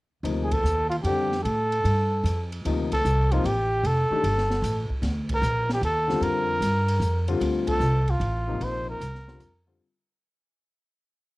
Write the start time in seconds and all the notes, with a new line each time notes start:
0.23 D2 C3 F3 A#3 D#4, ride
0.43 G#4
0.52 A4, kick, ride
0.63 D#2, hi-hat pedal
0.90 F4, ride
1.03 F2 D3 G3 C4 D4 G4, ride
1.32 snare
1.43 A2 A4, ride
1.72 ride
1.84 G2, ride
2.23 F2, hi-hat pedal, ride
2.52 ride
2.65 D2 C3 F3 A#3 D#4, ride
2.92 A4, kick, ride
3.05 C2, hi-hat pedal
3.31 C3 F3 A#3 D#4 F4, ride
3.44 A1 G4, ride
3.83 F1 A4, ride
4.10 D#3 A3 D4 G4, muted upright bass stroke
4.23 G1, ride
4.38 snare
4.51 snare
4.62 A1, hi-hat pedal, ride
4.90 muted upright bass stroke, kick
5.02 D2, snare, ride
5.29 kick, ride
5.35 A#4
5.42 A#1, hi-hat pedal
5.69 G4, snare
5.81 D#2 A4, ride
6.08 D3 G3 C4 F4, snare
6.21 F2 A#4, ride
6.61 G2, hi-hat pedal, ride
6.88 ride
7.00 F2, hi-hat pedal
7.28 D3 G3 C4 F4, ride
7.40 D2, ride
7.67 A4, kick, ride
7.80 C2, hi-hat pedal
8.08 F4, kick, ride
8.20 A1, ride
8.47 C3 F3 A#3 D#4
8.60 A#1 C5, ride
8.90 A#4
9.00 C2, hi-hat pedal, ride
9.15 snare
9.28 D3 G3 C4 F4, snare
9.40 F2, hi-hat pedal, ride
9.67 D3 G3 C4 F4